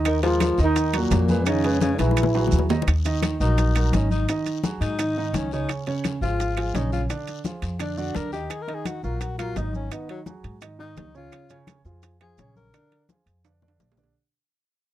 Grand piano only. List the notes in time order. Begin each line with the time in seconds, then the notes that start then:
Already playing: D#3 D#4 D#5
0.23 G#3 F4 A#4
0.59 D#3 D#4 D#5
0.93 F#3 F#4 A#4
1.29 G#3 G#4 B4
1.47 D#3 D#4 D#5
1.65 G#3 G#4 B4
2.00 F#3 F#4 G#4
2.35 F#3 F#4 G#4
2.70 D#3 D#4 D#5
3.05 D#3 D#4 D#5
3.41 F#3 F#4 A#4
3.76 F#3 F#4 A#4
3.94 D#3 D#4 D#5
4.29 D#3 D#4 D#5
4.64 F#3 F#4 G#4
4.99 D#3 D#4 D#5
5.17 D#3 D#4 D#5
5.53 C#3 C#4 C#5
5.87 C#3 C#4 C#5
6.22 F3 F4 G#4
6.57 F3 F4 G#4
6.74 C#3 C#4 C#5
7.09 D3 D4 D5
7.45 F3 F4 G#4
7.80 D3 D4 D5
7.98 D3 D4 D5
8.33 D#3 D#4 D#5
8.68 D#3 D#4 D#5
9.04 F#3 F#4 A#4
9.39 F#3 F#4 A#4
9.57 D#3 D#4 D#5
9.92 D#3 D#4 D#5
10.26 F#3 F#4 G#4
10.61 D#3 D#4 D#5
10.79 D#3 D#4 D#5
11.14 C#3 C#4 C#5
11.50 C#3 C#4 C#5
11.85 F3 F4 G#4
12.21 F3 F4 G#4
12.39 C#3 C#4 C#5
12.74 D3 D4 D5
13.09 F3 F4 G#4
13.45 D3 D4 D5
13.62 D3 D4 D5
13.98 D3 D4 D5